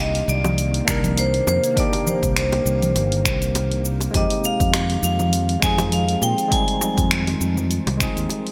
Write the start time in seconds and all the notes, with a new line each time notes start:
Already playing: C2 C3 D#3 A#3 D4 D#4 G4
0.00 D#5
0.15 open hi-hat
0.28 C2 D5, cabasa
0.44 high bongo, low conga, cabasa
0.58 open hi-hat, cabasa
0.74 open hi-hat
0.85 C2 A#3 D4, finger snap, kick, high bongo, cabasa
0.89 D#4 A#4
1.04 open hi-hat, low conga, cabasa
1.18 C5, open hi-hat, cabasa
1.34 open hi-hat
1.47 F2 C5, high bongo, cabasa
1.64 open hi-hat, cabasa
1.74 A#3 D4, kick, open hi-hat, cabasa
1.78 D#4 G4 D5
1.93 open hi-hat, high bongo
2.07 C5, low conga, cabasa
2.23 C2, kick, open hi-hat, cabasa
2.37 C5, finger snap, open hi-hat, cabasa
2.52 open hi-hat, high bongo
2.65 C2, cabasa
2.82 open hi-hat, low conga, cabasa
2.96 G1, open hi-hat, high bongo, cabasa
3.12 open hi-hat
3.25 C2, finger snap, kick, cabasa
3.42 open hi-hat, cabasa
3.55 open hi-hat, high bongo, cabasa
3.72 open hi-hat
3.85 cabasa
4.00 open hi-hat, high bongo, cabasa
4.11 F2 D#3 F3 G#3 C4 F4, kick, open hi-hat, high bongo, cabasa
4.15 D#4 G4 D#5
4.30 open hi-hat
4.44 F5, cabasa
4.60 F2, kick, open hi-hat, cabasa
4.74 finger snap, open hi-hat, high bongo, cabasa
4.90 open hi-hat
5.03 F2 F5, cabasa
5.19 high bongo, low conga, cabasa
5.33 open hi-hat, cabasa
5.49 open hi-hat
5.60 F2 G#3 C4 G#5, finger snap, kick, cabasa
5.64 D#4 G#4
5.78 open hi-hat, high bongo, low conga, cabasa
5.92 F5, open hi-hat, cabasa
6.09 open hi-hat
6.22 A#2 G5, high bongo, cabasa
6.38 open hi-hat, cabasa
6.48 G#3 C4 D#4, kick, open hi-hat, cabasa
6.53 G3 G#5
6.68 open hi-hat
6.81 high bongo, cabasa
6.97 F2, kick, open hi-hat, cabasa
7.11 finger snap, open hi-hat, cabasa
7.27 open hi-hat, high bongo
7.41 F2, cabasa
7.57 low conga, cabasa
7.71 open hi-hat, cabasa
7.87 C2, open hi-hat, high bongo
7.97 G#3 C4 D#4, finger snap, kick, cabasa
8.03 G#4
8.17 D#2, open hi-hat, cabasa
8.29 open hi-hat, high bongo, cabasa
8.47 open hi-hat